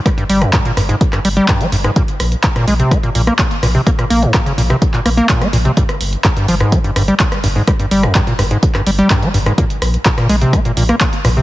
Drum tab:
HH |xxoxxxoxxxoxxxox|xxoxxxoxxxoxxxo-|xxoxxxoxxxoxxxox|xxoxxxoxxxoxxxo-|
CP |----x----x--x---|----x-------x---|----x----x--x---|----x-------x---|
SD |r--r--r--r--r--r|--r--r--r--r--r-|-r--r--r--r--r--|-r--r--r--r--r--|
BD |o---o---o---o---|o---o---o---o---|o---o---o---o---|o---o---o---o---|

HH |xxoxxxoxxxoxxxox|xxoxxxoxxxoxxxo-|
CP |----x----x--x---|----x-------x---|
SD |r--r--r--r--r--r|--r--r--r--r--r-|
BD |o---o---o---o---|o---o---o---o---|